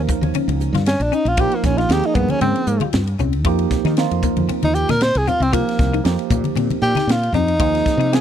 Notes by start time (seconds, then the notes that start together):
Already playing: F3 A#3 D#4 A#4
0.09 A#3, kick, hi-hat pedal, low conga
0.21 D#2, ride, high conga
0.34 C#4, ride, high conga
0.48 C#2, ride, high conga
0.60 hi-hat pedal
0.73 G2 F4, snare, ride, high conga
0.86 C#4, snare, ride
1.00 A#1 D4, ride
1.11 C#4 D#4, muted fretless electric bass stroke, hi-hat pedal
1.25 A#1 F4, ride
1.37 F3 A#3 D#4 F4 G4, kick, ride
1.52 A#3, ride
1.64 A#1 C#4, kick, snare, hi-hat pedal, low conga
1.78 D#4 F4, snare, ride
1.89 D#2 F3 A#3 D#4 G4 G#4, snare, ride
2.03 D#4, ride
2.15 G2 A#3 B3, kick, hi-hat pedal, low conga
2.28 C#4, muted fretless electric bass stroke, ride, high conga
2.41 G#2 C4 C#4, ride, high conga
2.56 ride
2.67 G#2, hi-hat pedal
2.80 F4, ride, high conga
2.93 G2, snare, ride, low conga
3.07 ride
3.19 C2 C#4, hi-hat pedal, low conga
3.33 ride
3.44 F2 F3 A#3 D#4 F4 G4, kick, ride
3.59 ride
3.71 kick, snare, hi-hat pedal, low conga
3.85 D#3 D#4, snare, ride
3.97 F3 A#3 D#4 F4, snare, ride
4.11 F2, ride
4.22 A#3, kick, hi-hat pedal, low conga
4.36 F2, ride, high conga
4.49 C4, ride, high conga
4.63 D#2 D#4, ride, high conga
4.75 G4, hi-hat pedal
4.89 A#2 D#4 A#4, snare, ride, high conga
5.01 C5, snare, ride
5.15 C2 G#4, ride
5.27 C4 F4, hi-hat pedal, low conga
5.40 C2 C4, ride
5.53 F3 A#3 D#4 F4 G4, kick, ride
5.69 snare, ride
5.79 C2, kick, snare, hi-hat pedal, low conga
5.93 D#4, ride
6.04 F2 F3 A#3 D#4 G4, snare, ride
6.19 ride
6.30 A#2 A#3, kick, hi-hat pedal, low conga
6.44 muted fretless electric bass stroke, ride, high conga
6.55 A#2 C4, ride, high conga
6.70 ride, high conga
6.82 A#2 G4, hi-hat pedal
6.95 D#4, snare, ride, high conga
7.07 A#2, snare, ride
7.12 F4
7.23 ride
7.32 F2 C4 D#4, hi-hat pedal, low conga
7.48 ride
7.59 D#2 F3 A#3 D#4 F4 G#4, kick, ride
7.75 snare, ride
7.86 kick, snare, hi-hat pedal
7.97 C3 D#4, ride
8.12 F3 A#3 D#4 G#4, snare, ride